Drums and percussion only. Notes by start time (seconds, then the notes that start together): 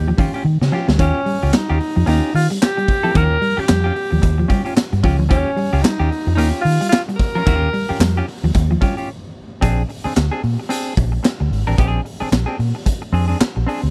0.18 kick, open hi-hat
0.34 closed hi-hat
0.62 snare
0.88 snare
0.99 kick, closed hi-hat
1.26 open hi-hat
1.54 snare, clap, closed hi-hat
1.80 open hi-hat
2.07 closed hi-hat
2.35 open hi-hat
2.50 closed hi-hat
2.63 snare, clap, closed hi-hat
2.78 closed hi-hat
2.88 kick, open hi-hat
3.15 kick, closed hi-hat
3.42 open hi-hat
3.69 snare, clap, closed hi-hat
3.96 open hi-hat
4.22 kick, closed hi-hat
4.50 kick, open hi-hat
4.66 closed hi-hat
4.77 snare, clap, closed hi-hat
4.93 closed hi-hat
5.04 kick, open hi-hat
5.31 kick, closed hi-hat
5.57 open hi-hat
5.85 snare, clap, closed hi-hat
6.12 open hi-hat
6.38 closed hi-hat
6.65 open hi-hat
6.81 closed hi-hat
6.93 snare, clap, closed hi-hat
7.09 closed hi-hat
7.19 kick, open hi-hat
7.47 kick, closed hi-hat
7.74 open hi-hat
8.01 snare, clap, closed hi-hat
8.28 open hi-hat
8.55 kick, closed hi-hat
8.82 kick, open hi-hat
8.98 closed hi-hat
9.62 kick, closed hi-hat
9.89 open hi-hat
10.17 snare, clap, closed hi-hat
10.44 open hi-hat
10.70 closed hi-hat
10.97 kick, open hi-hat
11.25 snare, clap, closed hi-hat
11.53 open hi-hat
11.78 kick, closed hi-hat
12.06 open hi-hat
12.33 snare, clap, closed hi-hat
12.60 open hi-hat
12.86 kick, closed hi-hat
13.14 open hi-hat
13.41 snare, clap, closed hi-hat
13.69 open hi-hat